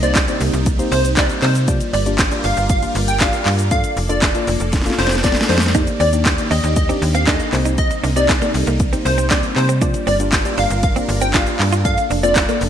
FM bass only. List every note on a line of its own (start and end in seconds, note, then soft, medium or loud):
0.00 0.28 C2 loud
0.41 0.50 C2 medium
0.53 0.82 C2 medium
0.92 1.30 C2 loud
1.42 1.81 C3 loud
1.93 2.32 G1 loud
2.44 2.54 G1 loud
2.57 2.86 G1 medium
2.95 3.34 G1 loud
3.46 3.84 G2 medium
3.97 4.35 F1 medium
4.47 4.57 F1 loud
4.60 4.89 F1 medium
4.99 5.37 F1 loud
5.49 5.88 F2 medium
6.00 6.39 D#2 medium
6.51 6.61 D#2 medium
6.64 6.92 D#2 loud
7.02 7.40 D#2 loud
7.53 7.91 C2 medium
8.04 8.42 C2 medium
8.54 8.64 C2 loud
8.67 8.96 C2 medium
9.05 9.44 C2 loud
9.56 9.95 C3 medium
10.07 10.45 G1 medium
10.58 10.67 G1 medium
10.70 10.99 G1 loud
11.09 11.47 G1 loud
11.60 11.98 G2 loud
12.10 12.49 F1 medium
12.61 12.69 F1 loud